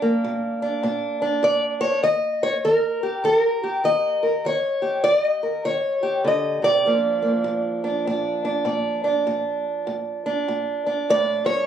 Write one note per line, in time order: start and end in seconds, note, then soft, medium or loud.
0.00 0.19 A#2 medium
0.00 3.03 A#3 soft
0.00 0.61 D4 soft
0.24 0.80 A#2 medium
0.62 0.83 D4 soft
0.83 1.39 A#2 medium
0.83 1.21 D4 soft
1.22 2.04 D4 soft
1.43 1.99 A#2 medium
1.43 1.60 D5 medium
1.81 2.03 C#5 loud
2.03 2.59 D#3 medium
2.03 3.01 D#5 medium
2.43 2.56 C#5 loud
2.65 3.20 D#3 medium
2.65 3.24 A#4 medium
3.03 3.62 G4 soft
3.24 3.79 D#3 medium
3.24 3.36 A4 medium
3.36 4.22 A#4 medium
3.63 4.43 G4 medium
3.84 4.40 D#3 medium
3.84 5.03 D#5 loud
4.23 4.46 A#4 soft
4.45 5.00 D#3 medium
4.45 5.05 C#5 medium
4.82 6.02 G4 soft
5.04 5.60 D#3 medium
5.04 5.18 D5 loud
5.18 6.24 D#5 loud
5.43 5.65 A#4 soft
5.65 6.21 D#3 medium
5.65 6.25 C#5 loud
6.03 6.83 G4 soft
6.24 6.62 D3 medium
6.24 6.63 D#5 medium
6.62 6.85 C3 medium
6.62 8.65 D5 loud
6.86 7.41 A#2 medium
6.86 11.67 F3 soft
6.86 7.22 A#3 soft
6.86 7.84 D4 soft
7.22 9.63 A#3 soft
7.44 8.00 A#2 medium
7.84 8.07 D4 soft
8.07 8.62 A#2 medium
8.07 8.43 D4 medium
8.45 9.03 D4 soft
8.65 9.21 A#2 medium
8.65 9.23 D5 soft
9.04 10.24 D4 soft
9.27 9.82 A#2 medium
9.87 10.42 A#2 medium
10.26 10.85 D4 soft
10.48 11.03 A#2 medium
10.86 11.67 D4 soft
11.10 11.44 A2 medium
11.10 11.45 D5 loud
11.45 11.67 G2 medium
11.45 11.67 C#5 loud